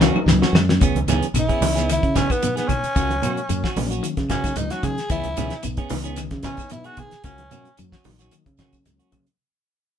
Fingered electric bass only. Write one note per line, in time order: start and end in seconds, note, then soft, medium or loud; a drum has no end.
0.00 0.12 C#2 medium
0.14 muted fingered electric bass stroke soft
0.26 0.40 C#2 medium
0.53 0.77 F#2 loud
0.81 0.94 C#2 medium
0.95 1.06 C#2 medium
1.07 1.20 C#2 medium
1.34 1.47 B1 medium
1.61 1.97 C#2 medium
2.03 2.27 C#3 medium
2.83 muted fingered electric bass stroke soft
2.96 3.19 C#2 medium
3.50 3.62 F#2 loud
3.76 4.00 A#1 medium
4.17 4.52 C#3 medium
4.56 4.69 C#2 medium
4.83 4.96 C#3 medium
5.10 5.23 C#2 medium
5.25 5.36 C#2 medium
5.38 5.50 C#2 medium
5.64 5.77 B1 medium
5.78 muted fingered electric bass stroke soft
5.91 6.27 C#2 medium
6.31 6.55 C#3 medium
7.13 muted fingered electric bass stroke soft
7.24 7.48 C#2 medium
7.79 7.91 F#2 medium
8.06 8.29 A#1 medium
8.46 8.81 C#3 medium
8.86 8.98 C#2 medium
9.12 9.25 C#3 medium